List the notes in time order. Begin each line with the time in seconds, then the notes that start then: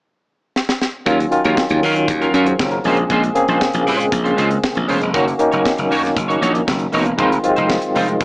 0.56 snare
0.69 snare
0.82 snare
1.05 D#2 D#3 F#3 C#4 F4 A#4, kick, closed hi-hat
1.20 muted clean electric guitar stroke, closed hi-hat
1.31 D#3 F#3 C#4 F4, muted clean electric guitar stroke, closed hi-hat
1.44 D#2 F#3 C#4 F4 A#4, closed hi-hat
1.57 muted clean electric guitar stroke, kick, snare
1.69 D#2, muted clean electric guitar stroke, closed hi-hat
1.83 D#3 F#3 C#4 F4 A#4, open hi-hat
1.96 muted clean electric guitar stroke, closed hi-hat
2.08 D#2, muted clean electric guitar stroke, kick, closed hi-hat
2.21 F#3 C#4 F4 A#4, closed hi-hat
2.34 F#2 F#3 C#4 F4 A#4, closed hi-hat
2.46 G#4 C5, muted clean electric guitar stroke, closed hi-hat
2.59 F#1 A#4 C#5, kick, snare
2.71 F#4 A#4, muted clean electric guitar stroke, closed hi-hat
2.84 A#1 C#3 G#3 A#3 C4 C#4 F4 G#4 C5, open hi-hat
2.97 muted clean electric guitar stroke, closed hi-hat
3.10 A#1 G#3 C#4 F4 C5, kick, closed hi-hat
3.23 muted clean electric guitar stroke, closed hi-hat
3.34 C#3 A#3 C4 G#4, muted clean electric guitar stroke, closed hi-hat
3.48 A#1 G#3 C#4 F4 C5, closed hi-hat
3.61 kick, snare
3.73 A#1, muted clean electric guitar stroke, closed hi-hat
3.86 A#2 G#3 C#4 F4 C5, open hi-hat
4.00 muted clean electric guitar stroke, closed hi-hat
4.12 A#1, muted clean electric guitar stroke, kick, closed hi-hat
4.24 G#3 C#4 F4 C5, closed hi-hat
4.36 C#2 G#3 C#4 F4 C5, closed hi-hat
4.50 muted clean electric guitar stroke, closed hi-hat
4.64 kick, snare
4.75 A#1, muted clean electric guitar stroke, closed hi-hat
4.87 E1 G#3 C#4 F4 C5, open hi-hat
5.01 F1, muted clean electric guitar stroke, closed hi-hat
5.13 F#1 D#3 A#3 C#4 D#4 F#4 C#5, kick, closed hi-hat
5.26 muted clean electric guitar stroke, closed hi-hat
5.39 D#3 A#3 C#4 D#4, muted clean electric guitar stroke, closed hi-hat
5.52 F#1 A#3 D#4 F#4 C#5, closed hi-hat
5.64 muted clean electric guitar stroke, kick, snare
5.77 F#1, muted clean electric guitar stroke, closed hi-hat
5.90 F#2 A#3 D#4 F#4 C#5, open hi-hat
6.03 muted clean electric guitar stroke, snare, closed hi-hat
6.15 F#1, muted clean electric guitar stroke, kick, closed hi-hat
6.28 A#3 D#4 F#4 C#5, closed hi-hat
6.41 A#1 A#3 D#4 F#4 C#5, closed hi-hat
6.54 muted clean electric guitar stroke, closed hi-hat
6.67 F#1, muted clean electric guitar stroke, kick, snare
6.79 muted clean electric guitar stroke, closed hi-hat
6.92 E1 A#3 D#4 F#4 C#5, open hi-hat
7.06 muted clean electric guitar stroke, closed hi-hat
7.18 F1 D#3 G#3 C4 D#4 F4 C5, kick, closed hi-hat
7.31 muted clean electric guitar stroke, closed hi-hat
7.43 D#3 F#3 C4 F4, muted clean electric guitar stroke, closed hi-hat
7.50 G#3
7.56 F1 G#3 D#4 F4 C5, closed hi-hat
7.69 muted clean electric guitar stroke, kick, snare
7.82 muted clean electric guitar stroke, closed hi-hat
7.95 F1 G#3 D#4 F4 C5, open hi-hat
8.08 muted clean electric guitar stroke, closed hi-hat
8.20 F1, muted clean electric guitar stroke, kick, closed hi-hat